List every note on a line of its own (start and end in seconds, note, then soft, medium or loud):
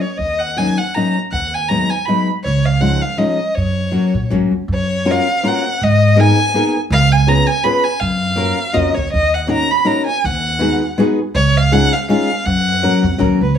0.01 0.19 C#5 medium
0.17 0.68 D#2 medium
0.17 0.41 D#5 medium
0.39 0.59 F#5 medium
0.57 0.77 F#3 medium
0.57 0.78 A#3 medium
0.57 0.78 C#4 medium
0.57 0.78 D#4 medium
0.57 0.79 G#5 loud
0.78 0.96 F#5 medium
0.94 1.16 F#3 medium
0.94 1.16 A#3 soft
0.94 1.16 C#4 soft
0.94 1.16 D#4 medium
0.94 1.15 A#5 medium
1.32 1.81 D#2 medium
1.32 1.56 F#5 loud
1.54 1.70 G#5 loud
1.68 1.90 F#3 medium
1.68 1.90 G#3 medium
1.68 1.90 B3 medium
1.68 1.90 D#4 medium
1.68 1.91 A#5 loud
1.90 2.07 G#5 medium
2.05 2.27 F#3 medium
2.05 2.28 G#3 medium
2.05 2.28 B3 medium
2.05 2.28 D#4 medium
2.05 2.26 B5 medium
2.44 2.93 C#2 medium
2.44 2.67 C#5 loud
2.65 2.83 F5 medium
2.80 3.01 F3 medium
2.80 3.01 G#3 medium
2.80 3.01 C#4 medium
2.80 3.02 D#4 medium
2.80 3.03 F#5 loud
3.02 3.19 F5 medium
3.17 3.38 F3 medium
3.17 3.39 G#3 medium
3.17 3.39 C#4 medium
3.17 3.39 D#4 medium
3.17 3.57 D#5 medium
3.56 3.94 F#2 medium
3.56 4.31 C#5 medium
3.91 4.13 F#3 medium
3.91 4.13 A#3 soft
3.91 4.13 C#4 medium
3.91 4.14 F#4 medium
4.14 4.30 A#2 medium
4.30 4.50 G#2 medium
4.30 4.51 F#3 medium
4.30 4.52 A#3 medium
4.30 4.52 C#4 medium
4.30 4.52 F#4 medium
4.51 4.67 F#2 medium
4.68 5.17 F#2 medium
4.73 5.12 C#5 loud
5.05 5.26 A#3 medium
5.05 5.26 C#4 medium
5.05 5.26 F4 medium
5.05 5.26 F#4 medium
5.05 5.27 A#4 medium
5.11 5.49 F5 loud
5.43 5.64 A#3 medium
5.43 5.64 C#4 medium
5.43 5.64 F4 medium
5.43 5.64 F#4 medium
5.43 5.65 A#4 medium
5.48 5.85 F#5 medium
5.82 6.29 G#2 medium
5.82 6.22 D#5 loud
6.16 6.37 A#3 medium
6.16 6.37 B3 medium
6.16 6.37 D#4 medium
6.16 6.37 G#4 medium
6.16 6.37 A#4 medium
6.20 6.76 G#5 loud
6.54 6.74 A#3 medium
6.54 6.75 B3 medium
6.54 6.75 D#4 medium
6.54 6.75 G#4 medium
6.54 6.75 A#4 medium
6.90 7.39 C#2 loud
6.90 7.14 F5 loud
7.12 7.30 G#5 loud
7.27 7.48 B3 medium
7.27 7.48 C#4 medium
7.27 7.48 F4 medium
7.27 7.48 G#4 medium
7.27 7.48 B4 medium
7.27 7.48 A#5 loud
7.47 7.65 G#5 loud
7.63 7.84 B3 medium
7.63 7.85 C#4 medium
7.63 7.85 F4 medium
7.63 7.85 G#4 medium
7.63 7.85 B4 medium
7.63 7.85 B5 loud
7.84 8.01 G#5 loud
8.00 8.50 F#2 medium
8.00 8.75 F5 loud
8.36 8.58 A#3 medium
8.36 8.58 C#4 medium
8.36 8.58 F4 medium
8.36 8.58 F#4 medium
8.36 8.58 A#4 medium
8.73 8.94 F2 medium
8.73 8.95 A#3 medium
8.73 8.95 C#4 medium
8.73 8.95 F4 medium
8.73 8.95 F#4 medium
8.73 8.95 A#4 medium
8.73 8.96 D#5 medium
8.95 9.12 D#2 medium
8.95 9.12 C#5 medium
9.13 9.62 D#2 medium
9.13 9.36 D#5 loud
9.34 9.51 F#5 medium
9.47 9.69 A#3 medium
9.47 9.69 C#4 medium
9.47 9.69 D#4 medium
9.47 9.70 F#4 medium
9.47 9.70 A#4 medium
9.51 9.72 A#5 loud
9.71 9.88 B5 medium
9.85 10.06 A#3 medium
9.85 10.06 C#4 medium
9.85 10.06 D#4 medium
9.85 10.07 F#4 medium
9.85 10.07 A#4 medium
9.85 10.06 A#5 loud
10.06 10.26 G#5 loud
10.24 10.72 D#2 loud
10.24 10.98 F#5 loud
10.59 10.80 G#3 medium
10.59 10.80 B3 medium
10.59 10.81 D#4 medium
10.59 10.81 F#4 medium
10.59 10.81 G#4 medium
10.98 11.18 G#3 medium
10.98 11.18 B3 medium
10.98 11.19 D#4 medium
10.98 11.19 F#4 medium
10.98 11.19 G#4 medium
11.35 11.83 C#2 loud
11.35 11.59 C#5 loud
11.57 11.75 F5 loud
11.72 11.92 G#3 medium
11.72 11.92 C#4 medium
11.72 11.92 D#4 medium
11.72 11.92 F4 medium
11.72 11.92 G#4 medium
11.72 11.95 F#5 loud
11.93 12.09 F5 loud
12.09 12.29 G#3 medium
12.09 12.30 C#4 medium
12.09 12.29 D#4 medium
12.09 12.29 F4 medium
12.09 12.29 G#4 medium
12.09 12.47 F5 loud
12.46 12.83 F#2 loud
12.46 13.20 F#5 loud
12.83 13.03 F#3 medium
12.83 13.03 A#3 medium
12.83 13.03 C#4 medium
12.83 13.04 F#4 medium
12.83 13.04 A#4 medium
13.03 13.18 F2 medium
13.18 13.39 D#2 medium
13.18 13.40 F#3 medium
13.18 13.40 A#3 medium
13.18 13.40 C#4 medium
13.18 13.40 F#4 medium
13.18 13.40 A#4 medium
13.41 13.56 C#2 medium
13.41 13.57 B4 medium